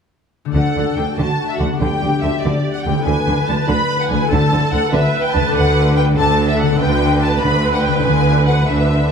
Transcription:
0.45 1.62 D3 soft
0.45 1.79 A3 soft
0.45 1.72 D4 soft
0.52 0.62 D2 soft
0.52 0.63 D3 soft
0.52 1.13 A4 soft
0.52 1.76 D5 soft
0.52 0.93 F#5 soft
0.52 0.93 F#5 medium
0.76 0.85 D2 soft
0.76 0.84 D3 soft
0.96 1.05 D2 soft
0.96 1.05 D3 soft
0.96 1.17 G5 soft
0.96 1.18 G5 soft
1.16 1.26 D2 soft
1.16 1.27 D3 soft
1.16 1.80 F#4 soft
1.16 1.48 A5 medium
1.16 1.49 A5 medium
1.49 1.59 E5 medium
1.49 1.59 E5 soft
1.59 1.68 D2 soft
1.59 1.68 D3 soft
1.59 1.80 F#5 medium
1.59 1.67 F#5 soft
1.64 2.88 D3 soft
1.68 2.92 B3 soft
1.73 3.04 D4 soft
1.77 1.89 D3 medium
1.77 3.04 G4 soft
1.77 3.06 D5 soft
1.77 2.21 G5 medium
1.82 1.90 D2 medium
2.02 2.10 D2 soft
2.02 2.10 D3 soft
2.21 2.31 D2 soft
2.21 2.31 D3 soft
2.21 2.43 E5 medium
2.42 2.51 D2 medium
2.42 2.53 D3 medium
2.42 2.74 D5 medium
2.42 2.74 D5 soft
2.73 2.84 F#5 soft
2.73 2.85 F#5 medium
2.83 2.94 D2 soft
2.83 2.95 D3 soft
2.83 3.05 G5 medium
2.83 3.05 G5 soft
2.89 4.12 D3 soft
2.94 4.27 B3 soft
2.98 4.21 E4 soft
3.03 3.14 D2 medium
3.03 3.14 D3 medium
3.03 4.31 B4 soft
3.03 4.29 B4 medium
3.03 3.46 G#5 medium
3.27 3.35 D2 soft
3.27 3.35 D3 soft
3.47 3.57 D2 soft
3.47 3.56 D3 soft
3.47 3.68 A5 medium
3.68 3.77 D2 medium
3.68 3.76 D3 medium
3.68 4.00 B5 medium
4.00 4.04 F#5 medium
4.00 4.11 F#5 medium
4.09 4.19 D2 soft
4.09 4.19 D3 soft
4.09 4.31 G#5 medium
4.14 5.37 D3 medium
4.18 5.42 A3 soft
4.23 5.53 E4 soft
4.27 5.55 C#5 soft
4.27 4.72 A5 medium
4.31 4.40 D2 medium
4.31 4.40 D3 medium
4.31 4.92 A4 medium
4.31 4.73 A5 medium
4.51 4.59 D2 soft
4.51 4.60 D3 soft
4.72 4.80 D2 soft
4.72 4.80 D3 soft
4.72 4.93 F#5 medium
4.72 4.94 F#5 medium
4.92 5.01 D2 medium
4.92 5.01 D3 medium
4.92 6.17 B4 medium
4.92 5.24 E5 medium
5.23 5.34 G5 medium
5.23 5.35 G5 medium
5.33 5.43 D2 medium
5.33 5.42 D3 soft
5.33 5.55 A5 medium
5.33 5.56 A5 medium
5.39 6.61 D3 medium
5.43 6.75 A3 soft
5.47 6.70 D4 soft
5.52 6.10 D2 medium
5.52 6.10 D3 medium
5.52 6.75 D5 medium
5.52 5.95 F#5 medium
5.56 5.96 F#5 medium
5.97 6.05 G5 medium
6.16 6.72 D2 medium
6.16 6.72 D3 medium
6.16 6.78 A4 medium
6.16 6.48 A5 medium
6.48 6.59 E5 medium
6.48 6.53 E5 medium
6.57 6.79 F#5 medium
6.62 7.87 D3 medium
6.62 6.81 F#5 medium
6.67 7.92 B3 soft
6.71 8.02 D4 soft
6.76 7.34 D2 medium
6.76 7.34 D3 medium
6.76 9.12 B4 medium
6.76 8.05 D5 soft
6.76 7.19 G5 medium
6.83 7.22 G5 medium
7.20 7.41 A5 medium
7.25 7.44 A5 medium
7.39 7.97 D2 medium
7.39 7.97 D3 medium
7.39 7.72 B5 medium
7.44 7.74 B5 medium
7.73 7.83 F#5 medium
7.73 7.84 F#5 medium
7.81 8.04 G5 medium
7.81 8.05 G5 medium
7.88 9.12 D3 medium
7.93 9.12 B3 soft
7.97 9.12 E4 soft
8.02 8.61 D2 medium
8.02 8.61 D3 medium
8.02 9.12 B4 soft
8.02 8.46 G#5 medium
8.07 8.48 G#5 medium
8.46 8.68 F#5 medium
8.67 9.12 D2 medium
8.67 9.12 D3 medium
8.67 9.11 E5 medium

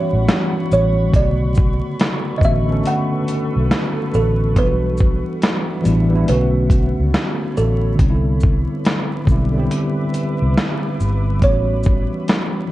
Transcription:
0.00 1.16 E3 medium
0.00 1.10 G3 medium
0.00 1.16 G3 medium
0.00 1.14 B3 medium
0.00 1.16 C#4 medium
0.00 1.15 E4 medium
0.00 1.16 F#4 medium
0.00 0.68 C#5 medium
0.00 1.10 F#5 medium
0.00 4.53 B5 medium
0.00 4.53 C#6 medium
0.13 0.27 A1 medium
0.29 snare loud
0.29 closed hi-hat medium
0.72 1.11 A1 medium
0.72 1.16 C#5 medium
0.72 shaker soft
1.10 1.80 B1 loud
1.10 2.34 D3 medium
1.10 2.34 A3 medium
1.10 2.35 B3 medium
1.10 4.53 A4 medium
1.10 4.53 B4 medium
1.10 kick loud
1.10 closed hi-hat medium
1.15 2.36 C#3 medium
1.15 2.37 F#4 medium
1.15 1.96 D5 medium
1.55 kick loud
1.55 shaker soft
2.00 snare loud
2.00 closed hi-hat medium
2.38 2.81 A1 medium
2.38 2.64 D3 medium
2.38 2.66 A3 medium
2.38 2.43 D#5 medium
2.38 kick medium
2.42 2.67 B3 medium
2.42 2.68 C#4 medium
2.42 2.69 F#4 medium
2.42 2.88 E5 medium
2.42 shaker soft
2.65 4.23 D3 medium
2.65 4.23 A3 medium
2.65 4.24 B3 medium
2.70 4.25 C#4 medium
2.70 4.26 A4 medium
2.85 4.18 F#5 loud
2.85 closed hi-hat medium
3.28 closed hi-hat soft
3.28 shaker soft
3.56 3.70 B1 medium
3.71 snare loud
3.71 closed hi-hat medium
4.14 4.56 A1 loud
4.14 4.58 A4 medium
4.14 shaker soft
4.53 5.23 B1 loud
4.53 5.76 E3 medium
4.53 5.77 G3 medium
4.53 5.78 B3 medium
4.53 kick loud
4.53 closed hi-hat medium
4.58 5.79 D4 medium
4.58 4.66 F4 medium
4.58 6.25 B4 loud
4.66 5.83 F#4 medium
4.97 kick medium
4.97 shaker soft
5.42 snare loud
5.42 closed hi-hat medium
5.82 6.08 E3 medium
5.82 6.09 G3 medium
5.82 6.10 B3 medium
5.82 closed hi-hat soft
5.82 shaker soft
5.86 6.25 A1 medium
5.86 6.11 D4 medium
5.86 6.12 E4 medium
6.09 6.26 E3 medium
6.09 6.27 G3 medium
6.09 6.27 B3 medium
6.14 6.29 D4 medium
6.14 6.30 E4 medium
6.24 6.34 C#3 medium
6.24 7.89 A3 medium
6.24 7.90 B3 medium
6.24 closed hi-hat medium
6.29 6.95 B1 medium
6.29 7.92 D3 medium
6.29 7.91 C#4 medium
6.29 7.92 F#4 medium
6.29 7.53 B4 medium
6.70 kick medium
6.70 closed hi-hat soft
6.70 shaker soft
6.99 7.13 C#2 medium
7.14 snare loud
7.14 closed hi-hat medium
7.57 7.96 A1 medium
7.57 8.01 A4 medium
7.57 shaker soft
7.96 8.66 C2 loud
7.96 9.19 D3 medium
7.96 9.20 G3 medium
7.96 9.21 B3 medium
7.96 11.39 B4 medium
7.96 11.39 E5 medium
7.96 11.39 D6 medium
7.96 kick loud
7.96 closed hi-hat medium
8.00 9.22 C4 medium
8.00 8.09 D#4 medium
8.00 12.72 B5 medium
8.10 9.26 E4 medium
8.40 kick medium
8.40 shaker soft
8.85 snare loud
8.85 closed hi-hat medium
9.25 9.67 B1 medium
9.25 9.51 D3 medium
9.25 9.53 G3 medium
9.25 9.53 B3 medium
9.25 kick medium
9.25 shaker soft
9.30 9.54 C4 medium
9.30 9.55 E4 medium
9.52 11.09 D3 medium
9.52 11.10 G3 medium
9.52 11.11 B3 medium
9.58 11.12 C4 medium
9.58 11.12 G4 medium
9.71 closed hi-hat medium
10.14 closed hi-hat soft
10.14 shaker soft
10.42 10.56 C2 medium
10.57 snare loud
10.57 closed hi-hat medium
11.00 11.39 G1 medium
11.00 shaker soft
11.39 12.09 A1 medium
11.39 12.62 E3 medium
11.39 12.63 G3 medium
11.39 12.64 B3 medium
11.39 12.72 F#5 medium
11.39 12.72 C#6 medium
11.39 kick loud
11.39 closed hi-hat medium
11.44 12.72 G3 medium
11.44 12.65 C#4 medium
11.44 11.53 F4 medium
11.44 12.25 C#5 loud
11.53 12.69 F#4 medium
11.83 kick loud
11.83 shaker soft
12.28 snare loud
12.28 closed hi-hat medium
12.68 12.72 E3 medium

